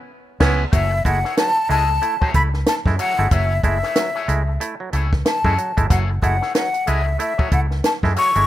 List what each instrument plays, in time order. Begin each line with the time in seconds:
0.40 fingered electric bass C#2, clean electric guitar G#3 C#4 E4 B4, clav B3 C#4 E4, kick, snare, crash
0.72 fingered electric bass F#1, clav F#3, clean electric guitar A3 E4 G#4 C#5, flute E5, kick, closed hi-hat
0.92 clav A3 E4, muted clean electric guitar stroke
1.05 fingered electric bass F#1, clav G#3 A3 E4, flute F#5, muted clean electric guitar stroke, kick, closed hi-hat
1.24 clean electric guitar A3 E4 G#4 C#5, snare
1.37 clav F#3, flute A5, snare, closed hi-hat
1.57 muted clean electric guitar stroke
1.69 fingered electric bass C#2, clav G#3 A3 E4, clean electric guitar A3 E4 G#4 D#5, flute A5, open hi-hat
1.89 clav A3 E4, muted clean electric guitar stroke
2.02 clav A3 E4, muted clean electric guitar stroke, closed hi-hat
2.21 clav F#3, clean electric guitar A3 E4 G#4 C#5, kick
2.34 fingered electric bass C#2, clav A3 E4, flute B5, muted clean electric guitar stroke, kick, closed hi-hat
2.54 muted clean electric guitar stroke, snare
2.66 flute A5, snare, closed hi-hat
2.86 fingered electric bass F#2, clav G#3 A3 E4, muted clean electric guitar stroke, kick, snare
2.98 clav F#3, clean electric guitar A3 E4 G#4 C#5, flute F#5, closed hi-hat
3.18 fingered electric bass G1, clav G#3 A3 E4, muted clean electric guitar stroke
3.31 fingered electric bass F#1, clav F#3, clean electric guitar A3 E4 G#4 C#5, flute E5, kick, closed hi-hat
3.51 clav A3 E4
3.63 fingered electric bass F#1, clav G#3 A3 E4, flute E5, muted clean electric guitar stroke, kick, closed hi-hat
3.83 clean electric guitar A3 E4 G#4 C#5, snare
3.96 clav F#3, muted clean electric guitar stroke, snare, closed hi-hat
4.15 clean electric guitar A3 E4 G#4 C#5
4.28 fingered electric bass C#2, clav G#3 A3 E4, muted clean electric guitar stroke, closed hi-hat
4.48 clav A3 E4, muted clean electric guitar stroke
4.60 clav A3 E4, muted clean electric guitar stroke, closed hi-hat
4.80 clav F#3
4.93 fingered electric bass C#2, clav A3 E4, clean electric guitar A3 E4 G#4 C#5, closed hi-hat
5.13 muted clean electric guitar stroke, kick, snare
5.25 flute A5, muted clean electric guitar stroke, snare, closed hi-hat
5.44 fingered electric bass F#2, clav G#3 A3 E4, clean electric guitar A3 E4 G#4 C#5, kick
5.58 clav F#3, muted clean electric guitar stroke, closed hi-hat
5.77 fingered electric bass G1, clav G#3 A3 E4, muted clean electric guitar stroke, kick, closed hi-hat
5.89 fingered electric bass F#1, clav F#3, clean electric guitar A3 E4 G#4 C#5, flute F#5, kick, closed hi-hat
6.09 clav A3 E4, muted clean electric guitar stroke
6.22 fingered electric bass F#1, clav G#3 A3 E4, flute F#5, muted clean electric guitar stroke, kick, closed hi-hat
6.41 clean electric guitar A3 E4 G#4 C#5, snare
6.54 clav F#3, flute F#5, muted clean electric guitar stroke, snare, closed hi-hat
6.73 muted clean electric guitar stroke, closed hi-hat
6.86 fingered electric bass C#2, clav G#3 A3 E4, clean electric guitar A3 E4 G#4 D#5, flute E5, closed hi-hat
7.06 clav A3 E4, muted clean electric guitar stroke
7.18 clav A3 E4, flute E5, muted clean electric guitar stroke, closed hi-hat
7.38 clav F#3, clean electric guitar A3 E4 G#4 C#5, kick
7.51 fingered electric bass C#2, clav A3 E4, flute F#5, muted clean electric guitar stroke, kick, closed hi-hat
7.70 muted clean electric guitar stroke, snare
7.84 flute A5, snare, closed hi-hat
8.02 fingered electric bass F#2, clav G#3 A3 E4, muted clean electric guitar stroke, kick, snare
8.16 clav F#3, clean electric guitar A3 E4 G#4 C#5, flute C#6, closed hi-hat
8.35 fingered electric bass G1, clav G#3 A3 E4, muted clean electric guitar stroke, closed hi-hat